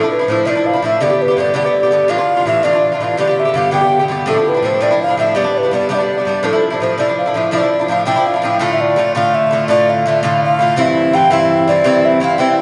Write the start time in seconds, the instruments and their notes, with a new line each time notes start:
Already playing: ocarina A4
0.01 bouzouki F3 D4 E4
0.11 ocarina B4
0.19 bouzouki F3 D4 E4
0.28 bouzouki A2 F3 D4 E4, ocarina C5
0.45 bouzouki A2 F3 D4 E4, ocarina E5
0.50 ocarina D5
0.55 bouzouki F3 D4 E4
0.66 ocarina F5
0.73 bouzouki F3 D4 E4
0.82 bouzouki A2 F3 D4 E4, ocarina E5
1.00 bouzouki G2 D3 B3 G4, ocarina D5
1.10 bouzouki D3 B3 G4
1.22 ocarina B4
1.28 bouzouki D3 B3 G4
1.37 bouzouki G2 D3 B3 G4, ocarina D5
1.54 bouzouki G2 D3 B3 G4, ocarina D5
1.64 bouzouki D3 B3 G4
1.83 bouzouki D3 B3 G4
1.91 bouzouki G2 D3 B3 G4
2.08 bouzouki A2 E3 D4 F4, ocarina F5
2.18 bouzouki E3 D4 F4
2.37 bouzouki E3 D4 F4
2.45 bouzouki A2 E3 D4 F4, ocarina E5
2.63 bouzouki A2 E3 D4 F4, ocarina D5
2.73 bouzouki E3 D4 F4
2.92 bouzouki E3 D4 F4
3.00 bouzouki A2 E3 D4 F4, ocarina F5
3.17 bouzouki G2 D3 B3 G4, ocarina D5
3.27 bouzouki D3 B3 G4
3.40 ocarina E5
3.45 bouzouki D3 B3 G4
3.54 bouzouki G2 D3 B3 G4, ocarina F5
3.71 bouzouki G2 D3 B3 G4, ocarina G5
3.81 bouzouki D3 B3 G4
3.99 bouzouki D3 B3 G4
4.08 bouzouki G2 D3 B3 G4
4.26 bouzouki A2 F3 D4 E4, ocarina A4
4.36 bouzouki F3 D4 E4
4.49 ocarina B4
4.55 bouzouki F3 D4 E4
4.63 bouzouki A2 F3 D4 E4, ocarina C5
4.81 bouzouki A2 F3 D4 E4, ocarina D5
4.91 bouzouki F3 D4 E4
5.02 ocarina F5
5.08 bouzouki F3 D4 E4
5.17 bouzouki A2 F3 D4 E4, ocarina E5
5.35 bouzouki G2 G3 B3 D4, ocarina D5
5.44 bouzouki G3 B3 D4
5.58 ocarina B4
5.63 bouzouki G3 B3 D4
5.71 bouzouki G2 G3 B3 D4, ocarina D5
5.89 bouzouki G2 G3 B3 D4, ocarina E5
5.95 bouzouki D4, ocarina D5
6.00 bouzouki G3 B3
6.18 bouzouki G3 B3 D4
6.25 bouzouki G2 G3 B3 D4
6.43 bouzouki A2 F3 D4 E4, ocarina A4
6.53 bouzouki F3 D4 E4
6.70 bouzouki F3 D4 E4
6.80 bouzouki A2 F3 D4 E4, ocarina C5
6.98 bouzouki A2 F3 D4 E4, ocarina D5
7.08 bouzouki F3 D4 E4
7.19 ocarina F5
7.26 bouzouki F3 D4 E4
7.34 bouzouki A2 F3 D4 E4, ocarina E5
7.51 bouzouki A2 F3 D4 E4, ocarina E5
7.57 ocarina D5
7.61 bouzouki F3 D4 E4
7.79 bouzouki F3 D4 E4
7.88 bouzouki A2 F3 D4 E4, ocarina F5
8.05 bouzouki A2 F3 D4 E4, ocarina G5
8.16 bouzouki F3 D4 E4
8.27 ocarina F5
8.34 bouzouki F3 D4 E4
8.42 bouzouki A2 F3 D4 E4
8.59 bouzouki A2 D3 A3 F4, ocarina F5
8.72 ocarina E5
8.81 ocarina D5
8.96 bouzouki A2 D3 A3 F4
9.15 bouzouki A2 D3 A3 F4, ocarina F5
9.35 ocarina E5
9.51 bouzouki A2 D3 A3 F4
9.68 bouzouki A2 D3 A3 F4, ocarina D5
9.90 ocarina F5
10.06 bouzouki A2 D3 A3 F4, ocarina E5
10.23 bouzouki A2 D3 A3 F4, ocarina F5
10.44 ocarina F5
10.59 bouzouki A2 D3 A3 F4
10.76 bouzouki G2 E3 C4 E4, ocarina F5
10.81 ocarina E5
11.13 bouzouki G2 E3 C4 E4, ocarina G5
11.30 bouzouki G2 E3 C4 E4, ocarina E5
11.67 bouzouki G2 E3 C4 E4, ocarina D5
11.84 bouzouki G2 E3 C4 E4
12.05 ocarina E5
12.20 bouzouki G2 E3 C4 E4, ocarina F5
12.38 bouzouki G2 E3 C4 E4, ocarina G5